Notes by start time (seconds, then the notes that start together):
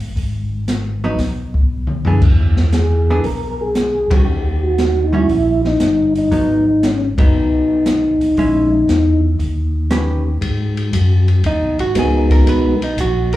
0.00 G#1, open hi-hat
0.16 G#1, kick, open hi-hat
0.68 snare, closed hi-hat
1.04 F#3 B3 D#4
1.19 B1, kick, snare, open hi-hat
1.54 kick
1.87 mid tom
2.05 E3 B3 D4 G#4, floor tom
2.21 E2, kick, crash
2.57 snare
2.73 G#4, snare, closed hi-hat
3.10 E3 B3 D4 G#4
3.24 B1 A#4, kick, open hi-hat
3.61 G#4
3.75 snare, closed hi-hat
4.10 B1 D#3 G3 C#4 F#4 G4, kick, ride
4.27 D#2
4.63 F#4
4.78 snare, closed hi-hat
5.04 D#4
5.13 D#3 G3 C#4 E4 F#4
5.29 A#1, kick, open hi-hat
5.64 D#4, snare
5.80 G1, snare, closed hi-hat
6.15 D#4, open hi-hat
6.31 G#1 F#3 B3 D#4, kick, open hi-hat
6.83 C#4, snare, closed hi-hat
7.18 F#1 F#3 B3 D#4, kick, ride
7.34 B1
7.86 snare, closed hi-hat
8.21 B1, open hi-hat
8.37 A#1 G#3 C#4 E4, kick, open hi-hat
8.88 E2, snare, closed hi-hat
9.39 D#2, kick, open hi-hat
9.91 D#3 C#4 G4 B4, snare, closed hi-hat
10.41 G#2, kick, ride
10.77 ride
10.93 F#2, kick, hi-hat pedal, ride
11.28 ride
11.44 D#2 D#4, kick, ride
11.61 B1
11.79 G#1 F#4, ride
11.95 C#2 G#3 B3 D#4 F#4 G#4 A#4, kick, hi-hat pedal, ride
12.30 A#4, kick, ride
12.46 B1 B4, kick, ride
12.82 D#4, ride
12.97 A#1 F#4, kick, hi-hat pedal, ride
13.33 ride